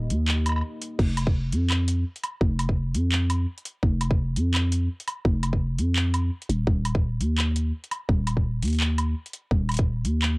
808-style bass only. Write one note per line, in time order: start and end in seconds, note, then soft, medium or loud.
0.00 0.12 D#1 loud
0.10 0.63 D#2 loud
0.99 1.54 F1 loud
1.52 2.05 F2 loud
2.41 2.96 F1 loud
2.94 3.47 F2 medium
3.83 4.38 F1 loud
4.37 4.89 F2 loud
5.25 5.80 F1 loud
5.78 6.31 F2 medium
6.49 6.66 D#1 medium
6.67 7.21 D#1 loud
7.20 7.72 D#2 loud
8.09 8.64 D#1 loud
8.62 9.15 D#2 loud
9.51 10.06 D#1 loud
10.04 10.38 D#2 medium